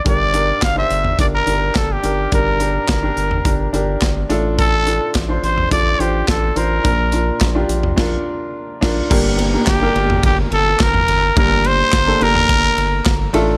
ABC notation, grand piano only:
X:1
M:4/4
L:1/16
Q:1/4=106
K:Gdor
V:1 name="Grand piano"
[DGB]2 [DGB]3 [DGc]3 [DGB]2 [DGB]3 z [DGB]2 | [DGB]2 [DGB]3 [DGB]3 [DGB]2 [DGB]3 z [DFA]2- | [DFA] z [DFA]3 [DFc]3 [DFA]2 [DFc]3 z [DFc]2 | [DFB]2 [DFB]3 [DFG]3 [DFB]2 z4 [DFB]2 |
[B,DGB]3 [B,DGB]2 [B,DGB]6- [B,DGB] z4 | [B,DGB]4 z [B,DGA] [B,DGB]6- [B,DGB] z [A,DFA]2 |]
V:2 name="Grand piano" clef=bass
G,,6 z8 z2 | G,,6 z8 A,,2- | A,,4 z12 | B,,6 z8 z2 |
G,,6 z8 z2 | G,,6 z8 A,,2 |]